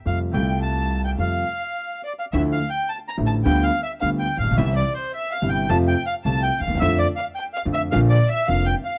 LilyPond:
<<
  \new Staff \with { instrumentName = "Bandoneon" } { \time 4/4 \key f \major \tempo 4 = 107 f''8 g''8 a''8. g''16 f''4. d''16 f''16 | \key d \minor \tuplet 3/2 { e''8 f''8 g''8 a''8 bes''8 a''8 g''8 f''8 e''8 f''8 g''8 f''8 } | \tuplet 3/2 { e''8 d''8 c''8 e''8 f''8 g''8 a''8 g''8 f''8 a''8 g''8 f''8 } | \tuplet 3/2 { e''8 d''8 f''8 g''8 f''8 e''8 f''8 d''8 e''8 f''8 g''8 f''8 } | }
  \new Staff \with { instrumentName = "Violin section" } { \time 4/4 \key f \major f''8 g''8 a''8. g''16 f''4. d''16 f''16 | \key d \minor \tuplet 3/2 { e''8 f''8 g''8 a''8 bes''8 a''8 g''8 f''8 e''8 f''8 g''8 f''8 } | \tuplet 3/2 { e''8 d''8 c''8 e''8 f''8 g''8 a''8 g''8 f''8 a''8 g''8 f''8 } | \tuplet 3/2 { e''8 d''8 f''8 g''8 f''8 e''8 f''8 d''8 e''8 f''8 g''8 f''8 } | }
  \new Staff \with { instrumentName = "Grand piano" } { \clef bass \time 4/4 \key f \major <f, c f g a f'>8 <c, c g a f'>4. <f, c f g a f'>8 r4. | \key d \minor <d, d f a e'>8 r4 <a,, a, d f a e'>8 <d, d g b f'>8 r8 <d, d g b f'>8 r32 a,,32 bes,,32 b,,32 | <c, c e g e'>8 r4 <g,, g, c e g e'>8 <f, c f a f'>8 r8 <c, c f a f'>8 r32 d,32 ees,32 e,32 | <f, d f a f'>8 r4 <f, d f a f'>8 <bes,, bes, d f bes f'>8 r8 <f,, f, d f bes f'>8 r8 | }
  \new Staff \with { instrumentName = "Upright bass" } { \clef bass \time 4/4 \key f \major f,16. r32 c,4~ c,16. r32 f,16. r4. r32 | \key d \minor d,16. r4 r32 a,,16. r32 d,16. r8 r32 d,16. r16 a,,32 bes,,32 b,,32 | c,16. r4 r32 g,,16. r32 f,16. r8 r32 c,16. r16 d,32 ees,32 e,32 | f,16. r4 r32 f,16. r32 bes,,16. r8 r32 f,,16. r8 r32 | }
>>